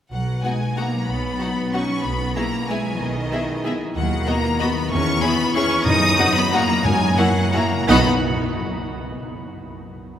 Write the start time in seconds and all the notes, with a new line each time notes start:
0.11 B1 B2 F#3 F#5
0.27 B3
0.44 G#3 B3 D#4 F#4 F#5 G#5
0.61 F#4
0.77 A#3 B3 D#4 F#4 F#5 A#5
0.93 F#3
1.08 B1 B2 B3 B5
1.23 B3
1.40 B3 D#4 F#4 F#5
1.56 F#4
1.73 B3 C#4 D#4 F#4 F#5 C#6
1.89 F#3
2.04 B1 B2 B3 B5
2.19 B3
2.36 A#3 B3 E4 G#4 E5 A#5
2.52 G#4
2.69 G#3 B3 E4 G#4 E5 G#5
2.85 G#3
3.00 B1 B2 D#3 D#5
3.16 B3
3.32 B3 E4 G#4 E5
3.49 G#4
3.65 B3 E4 G#4 E5
3.81 G#3
3.96 D#2 D#3 F#3 F#5
4.12 B3
4.27 A#3 B3 F#4 D#5 A#5
4.44 B3
4.59 B3 D#4 F#4 D#5 B5
4.75 B3
4.90 E2 E3 C#4 C#6
5.06 E4
5.21 B3 E4 G#4 C#5 B5
5.38 B4
5.54 B3 C#4 E4 G#4 C#5 C#6
5.70 B3
5.85 F#2 D#4 D#6
6.02 B3
6.18 B3 D#4 F#4 F#5
6.35 B3 F#4 B5
6.52 A#3 B3 D#4 F#4 F#5 A#5
6.69 F#3
6.84 F#2 G#3 G#5
7.00 A#3
7.17 F#3 A#3 E4 F#4 F#5
7.35 F#4
7.53 A#3 E4 F#4 F#5 A#5
7.71 C#3
7.85 B1 B2 B3 D#4 F#4 F#5 B5
7.89 F#4 D#5